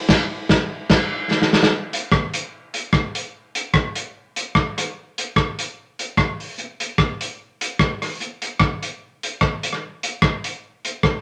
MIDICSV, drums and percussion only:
0, 0, Header, 1, 2, 480
1, 0, Start_track
1, 0, Tempo, 405132
1, 113, Time_signature, 4, 2, 24, 8
1, 13288, End_track
2, 0, Start_track
2, 0, Title_t, "Drums"
2, 102, Note_on_c, 9, 38, 120
2, 102, Note_on_c, 9, 49, 87
2, 108, Note_on_c, 9, 36, 110
2, 221, Note_off_c, 9, 38, 0
2, 221, Note_off_c, 9, 49, 0
2, 226, Note_off_c, 9, 36, 0
2, 584, Note_on_c, 9, 38, 106
2, 589, Note_on_c, 9, 36, 105
2, 703, Note_off_c, 9, 38, 0
2, 707, Note_off_c, 9, 36, 0
2, 1062, Note_on_c, 9, 38, 114
2, 1062, Note_on_c, 9, 49, 77
2, 1067, Note_on_c, 9, 36, 114
2, 1180, Note_off_c, 9, 38, 0
2, 1180, Note_off_c, 9, 49, 0
2, 1186, Note_off_c, 9, 36, 0
2, 1551, Note_on_c, 9, 38, 64
2, 1670, Note_off_c, 9, 38, 0
2, 1679, Note_on_c, 9, 38, 72
2, 1797, Note_off_c, 9, 38, 0
2, 1813, Note_on_c, 9, 38, 102
2, 1927, Note_off_c, 9, 38, 0
2, 1927, Note_on_c, 9, 38, 100
2, 2046, Note_off_c, 9, 38, 0
2, 2289, Note_on_c, 9, 42, 85
2, 2408, Note_off_c, 9, 42, 0
2, 2507, Note_on_c, 9, 36, 108
2, 2512, Note_on_c, 9, 37, 113
2, 2625, Note_off_c, 9, 36, 0
2, 2630, Note_off_c, 9, 37, 0
2, 2767, Note_on_c, 9, 42, 87
2, 2886, Note_off_c, 9, 42, 0
2, 3245, Note_on_c, 9, 42, 85
2, 3364, Note_off_c, 9, 42, 0
2, 3468, Note_on_c, 9, 36, 98
2, 3468, Note_on_c, 9, 37, 104
2, 3586, Note_off_c, 9, 36, 0
2, 3587, Note_off_c, 9, 37, 0
2, 3732, Note_on_c, 9, 42, 93
2, 3851, Note_off_c, 9, 42, 0
2, 4207, Note_on_c, 9, 42, 88
2, 4326, Note_off_c, 9, 42, 0
2, 4427, Note_on_c, 9, 36, 104
2, 4429, Note_on_c, 9, 37, 109
2, 4545, Note_off_c, 9, 36, 0
2, 4547, Note_off_c, 9, 37, 0
2, 4686, Note_on_c, 9, 42, 90
2, 4804, Note_off_c, 9, 42, 0
2, 5170, Note_on_c, 9, 42, 86
2, 5288, Note_off_c, 9, 42, 0
2, 5392, Note_on_c, 9, 36, 91
2, 5392, Note_on_c, 9, 37, 103
2, 5510, Note_off_c, 9, 36, 0
2, 5510, Note_off_c, 9, 37, 0
2, 5660, Note_on_c, 9, 37, 60
2, 5662, Note_on_c, 9, 42, 97
2, 5779, Note_off_c, 9, 37, 0
2, 5781, Note_off_c, 9, 42, 0
2, 6138, Note_on_c, 9, 42, 88
2, 6256, Note_off_c, 9, 42, 0
2, 6353, Note_on_c, 9, 36, 103
2, 6356, Note_on_c, 9, 37, 105
2, 6471, Note_off_c, 9, 36, 0
2, 6475, Note_off_c, 9, 37, 0
2, 6619, Note_on_c, 9, 42, 91
2, 6738, Note_off_c, 9, 42, 0
2, 7100, Note_on_c, 9, 42, 81
2, 7218, Note_off_c, 9, 42, 0
2, 7314, Note_on_c, 9, 36, 99
2, 7319, Note_on_c, 9, 37, 107
2, 7433, Note_off_c, 9, 36, 0
2, 7438, Note_off_c, 9, 37, 0
2, 7585, Note_on_c, 9, 46, 51
2, 7703, Note_off_c, 9, 46, 0
2, 7793, Note_on_c, 9, 44, 63
2, 7912, Note_off_c, 9, 44, 0
2, 8058, Note_on_c, 9, 42, 85
2, 8177, Note_off_c, 9, 42, 0
2, 8272, Note_on_c, 9, 36, 105
2, 8274, Note_on_c, 9, 37, 105
2, 8390, Note_off_c, 9, 36, 0
2, 8392, Note_off_c, 9, 37, 0
2, 8540, Note_on_c, 9, 42, 84
2, 8658, Note_off_c, 9, 42, 0
2, 9019, Note_on_c, 9, 42, 84
2, 9137, Note_off_c, 9, 42, 0
2, 9234, Note_on_c, 9, 36, 92
2, 9234, Note_on_c, 9, 37, 111
2, 9353, Note_off_c, 9, 36, 0
2, 9353, Note_off_c, 9, 37, 0
2, 9502, Note_on_c, 9, 37, 65
2, 9504, Note_on_c, 9, 46, 54
2, 9621, Note_off_c, 9, 37, 0
2, 9623, Note_off_c, 9, 46, 0
2, 9717, Note_on_c, 9, 44, 67
2, 9836, Note_off_c, 9, 44, 0
2, 9974, Note_on_c, 9, 42, 87
2, 10093, Note_off_c, 9, 42, 0
2, 10184, Note_on_c, 9, 37, 112
2, 10188, Note_on_c, 9, 36, 107
2, 10302, Note_off_c, 9, 37, 0
2, 10307, Note_off_c, 9, 36, 0
2, 10457, Note_on_c, 9, 42, 88
2, 10576, Note_off_c, 9, 42, 0
2, 10940, Note_on_c, 9, 42, 91
2, 11058, Note_off_c, 9, 42, 0
2, 11149, Note_on_c, 9, 37, 107
2, 11152, Note_on_c, 9, 36, 98
2, 11268, Note_off_c, 9, 37, 0
2, 11270, Note_off_c, 9, 36, 0
2, 11414, Note_on_c, 9, 42, 90
2, 11524, Note_on_c, 9, 37, 67
2, 11532, Note_off_c, 9, 42, 0
2, 11642, Note_off_c, 9, 37, 0
2, 11887, Note_on_c, 9, 42, 89
2, 12005, Note_off_c, 9, 42, 0
2, 12109, Note_on_c, 9, 36, 105
2, 12109, Note_on_c, 9, 37, 115
2, 12227, Note_off_c, 9, 36, 0
2, 12227, Note_off_c, 9, 37, 0
2, 12372, Note_on_c, 9, 42, 84
2, 12490, Note_off_c, 9, 42, 0
2, 12852, Note_on_c, 9, 42, 84
2, 12970, Note_off_c, 9, 42, 0
2, 13072, Note_on_c, 9, 36, 94
2, 13072, Note_on_c, 9, 37, 106
2, 13190, Note_off_c, 9, 36, 0
2, 13191, Note_off_c, 9, 37, 0
2, 13288, End_track
0, 0, End_of_file